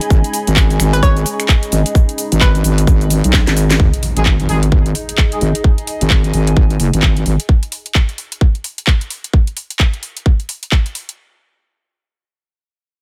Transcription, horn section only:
0, 0, Header, 1, 2, 480
1, 0, Start_track
1, 0, Key_signature, 5, "minor"
1, 0, Tempo, 461538
1, 108, Time_signature, 4, 2, 24, 8
1, 13540, End_track
2, 0, Start_track
2, 0, Title_t, "Horn section"
2, 0, Program_c, 0, 61
2, 4333, Note_on_c, 0, 56, 94
2, 4333, Note_on_c, 0, 63, 90
2, 4333, Note_on_c, 0, 68, 103
2, 4392, Note_off_c, 0, 56, 0
2, 4392, Note_off_c, 0, 63, 0
2, 4392, Note_off_c, 0, 68, 0
2, 4668, Note_on_c, 0, 56, 93
2, 4668, Note_on_c, 0, 63, 83
2, 4668, Note_on_c, 0, 68, 105
2, 4757, Note_off_c, 0, 56, 0
2, 4757, Note_off_c, 0, 63, 0
2, 4757, Note_off_c, 0, 68, 0
2, 5532, Note_on_c, 0, 56, 82
2, 5532, Note_on_c, 0, 63, 78
2, 5532, Note_on_c, 0, 68, 91
2, 5591, Note_off_c, 0, 63, 0
2, 5592, Note_off_c, 0, 56, 0
2, 5592, Note_off_c, 0, 68, 0
2, 13540, End_track
0, 0, End_of_file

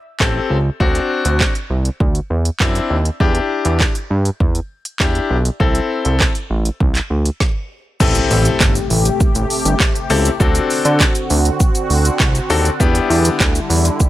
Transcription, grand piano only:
0, 0, Header, 1, 2, 480
1, 0, Start_track
1, 0, Tempo, 600000
1, 642, Time_signature, 4, 2, 24, 8
1, 11274, End_track
2, 0, Start_track
2, 0, Title_t, "Grand piano"
2, 0, Program_c, 0, 0
2, 160, Note_on_c, 0, 60, 86
2, 162, Note_on_c, 0, 67, 82
2, 164, Note_on_c, 0, 69, 96
2, 442, Note_off_c, 0, 60, 0
2, 443, Note_off_c, 0, 67, 0
2, 444, Note_off_c, 0, 69, 0
2, 640, Note_on_c, 0, 60, 88
2, 642, Note_on_c, 0, 62, 77
2, 645, Note_on_c, 0, 66, 98
2, 1202, Note_off_c, 0, 60, 0
2, 1203, Note_off_c, 0, 62, 0
2, 1205, Note_off_c, 0, 66, 0
2, 2081, Note_on_c, 0, 60, 89
2, 2083, Note_on_c, 0, 62, 78
2, 2085, Note_on_c, 0, 64, 99
2, 2362, Note_off_c, 0, 60, 0
2, 2363, Note_off_c, 0, 62, 0
2, 2364, Note_off_c, 0, 64, 0
2, 2562, Note_on_c, 0, 62, 88
2, 2564, Note_on_c, 0, 64, 81
2, 2566, Note_on_c, 0, 67, 101
2, 3124, Note_off_c, 0, 62, 0
2, 3124, Note_off_c, 0, 64, 0
2, 3125, Note_off_c, 0, 67, 0
2, 4000, Note_on_c, 0, 62, 84
2, 4002, Note_on_c, 0, 64, 80
2, 4004, Note_on_c, 0, 67, 97
2, 4282, Note_off_c, 0, 62, 0
2, 4283, Note_off_c, 0, 64, 0
2, 4284, Note_off_c, 0, 67, 0
2, 4479, Note_on_c, 0, 60, 88
2, 4482, Note_on_c, 0, 64, 80
2, 4484, Note_on_c, 0, 69, 97
2, 5042, Note_off_c, 0, 60, 0
2, 5044, Note_off_c, 0, 64, 0
2, 5045, Note_off_c, 0, 69, 0
2, 6401, Note_on_c, 0, 60, 88
2, 6402, Note_on_c, 0, 64, 83
2, 6404, Note_on_c, 0, 67, 78
2, 6405, Note_on_c, 0, 69, 94
2, 6963, Note_off_c, 0, 60, 0
2, 6963, Note_off_c, 0, 64, 0
2, 6965, Note_off_c, 0, 67, 0
2, 6965, Note_off_c, 0, 69, 0
2, 8080, Note_on_c, 0, 60, 85
2, 8080, Note_on_c, 0, 64, 80
2, 8081, Note_on_c, 0, 67, 80
2, 8083, Note_on_c, 0, 69, 100
2, 8221, Note_off_c, 0, 60, 0
2, 8221, Note_off_c, 0, 64, 0
2, 8222, Note_off_c, 0, 67, 0
2, 8223, Note_off_c, 0, 69, 0
2, 8319, Note_on_c, 0, 60, 88
2, 8320, Note_on_c, 0, 62, 80
2, 8322, Note_on_c, 0, 66, 78
2, 8323, Note_on_c, 0, 69, 95
2, 8882, Note_off_c, 0, 60, 0
2, 8882, Note_off_c, 0, 62, 0
2, 8883, Note_off_c, 0, 66, 0
2, 8884, Note_off_c, 0, 69, 0
2, 9999, Note_on_c, 0, 60, 86
2, 10001, Note_on_c, 0, 62, 81
2, 10001, Note_on_c, 0, 66, 82
2, 10003, Note_on_c, 0, 69, 101
2, 10141, Note_off_c, 0, 60, 0
2, 10142, Note_off_c, 0, 62, 0
2, 10142, Note_off_c, 0, 66, 0
2, 10143, Note_off_c, 0, 69, 0
2, 10238, Note_on_c, 0, 59, 92
2, 10239, Note_on_c, 0, 62, 85
2, 10240, Note_on_c, 0, 64, 83
2, 10243, Note_on_c, 0, 67, 96
2, 10802, Note_off_c, 0, 59, 0
2, 10802, Note_off_c, 0, 62, 0
2, 10803, Note_off_c, 0, 64, 0
2, 10804, Note_off_c, 0, 67, 0
2, 11274, End_track
0, 0, End_of_file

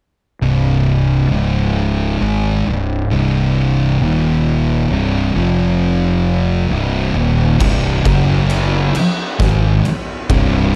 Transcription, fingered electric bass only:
0, 0, Header, 1, 3, 480
1, 0, Start_track
1, 0, Tempo, 898204
1, 227, Time_signature, 4, 2, 24, 8
1, 5747, End_track
2, 0, Start_track
2, 0, Title_t, "Fingered electric bass"
2, 0, Program_c, 0, 33
2, 222, Note_on_c, 0, 24, 85
2, 683, Note_off_c, 0, 24, 0
2, 698, Note_on_c, 0, 25, 90
2, 1161, Note_off_c, 0, 25, 0
2, 1181, Note_on_c, 0, 32, 90
2, 1407, Note_off_c, 0, 32, 0
2, 1425, Note_on_c, 0, 24, 78
2, 1649, Note_off_c, 0, 24, 0
2, 1667, Note_on_c, 0, 24, 88
2, 2125, Note_off_c, 0, 24, 0
2, 2143, Note_on_c, 0, 27, 97
2, 2603, Note_off_c, 0, 27, 0
2, 2621, Note_on_c, 0, 24, 91
2, 2846, Note_off_c, 0, 24, 0
2, 2860, Note_on_c, 0, 29, 93
2, 3562, Note_off_c, 0, 29, 0
2, 3582, Note_on_c, 0, 24, 88
2, 3807, Note_off_c, 0, 24, 0
2, 3817, Note_on_c, 0, 27, 90
2, 4044, Note_off_c, 0, 27, 0
2, 4063, Note_on_c, 0, 24, 98
2, 4288, Note_off_c, 0, 24, 0
2, 4304, Note_on_c, 0, 30, 96
2, 4763, Note_off_c, 0, 30, 0
2, 5021, Note_on_c, 0, 32, 102
2, 5246, Note_off_c, 0, 32, 0
2, 5502, Note_on_c, 0, 24, 95
2, 5747, Note_off_c, 0, 24, 0
2, 5747, End_track
3, 0, Start_track
3, 0, Title_t, "Muted fingered electric bass strokes"
3, 4789, Note_on_c, 9, 29, 45
3, 4843, Note_off_c, 9, 29, 0
3, 5264, Note_on_c, 9, 29, 42
3, 5318, Note_off_c, 9, 29, 0
3, 5747, End_track
0, 0, End_of_file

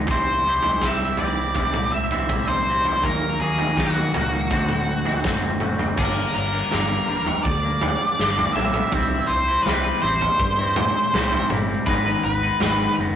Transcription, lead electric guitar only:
0, 0, Header, 1, 2, 480
1, 0, Start_track
1, 0, Tempo, 736196
1, 61, Time_signature, 4, 2, 24, 8
1, 8578, End_track
2, 0, Start_track
2, 0, Title_t, "Lead electric guitar"
2, 0, Program_c, 0, 29
2, 72, Note_on_c, 0, 72, 86
2, 555, Note_on_c, 0, 76, 101
2, 561, Note_off_c, 0, 72, 0
2, 779, Note_off_c, 0, 76, 0
2, 782, Note_on_c, 0, 74, 88
2, 1250, Note_off_c, 0, 74, 0
2, 1253, Note_on_c, 0, 76, 91
2, 1591, Note_off_c, 0, 76, 0
2, 1619, Note_on_c, 0, 72, 85
2, 1985, Note_off_c, 0, 72, 0
2, 1988, Note_on_c, 0, 70, 81
2, 2216, Note_off_c, 0, 70, 0
2, 2219, Note_on_c, 0, 68, 75
2, 2443, Note_off_c, 0, 68, 0
2, 2462, Note_on_c, 0, 66, 72
2, 3397, Note_off_c, 0, 66, 0
2, 3902, Note_on_c, 0, 70, 69
2, 4126, Note_off_c, 0, 70, 0
2, 4142, Note_on_c, 0, 70, 79
2, 4837, Note_off_c, 0, 70, 0
2, 4846, Note_on_c, 0, 74, 75
2, 5560, Note_off_c, 0, 74, 0
2, 5562, Note_on_c, 0, 76, 99
2, 6046, Note_on_c, 0, 72, 81
2, 6068, Note_off_c, 0, 76, 0
2, 6275, Note_off_c, 0, 72, 0
2, 6278, Note_on_c, 0, 71, 84
2, 6530, Note_off_c, 0, 71, 0
2, 6532, Note_on_c, 0, 72, 78
2, 7473, Note_off_c, 0, 72, 0
2, 7736, Note_on_c, 0, 71, 99
2, 7977, Note_off_c, 0, 71, 0
2, 7985, Note_on_c, 0, 71, 103
2, 8439, Note_off_c, 0, 71, 0
2, 8578, End_track
0, 0, End_of_file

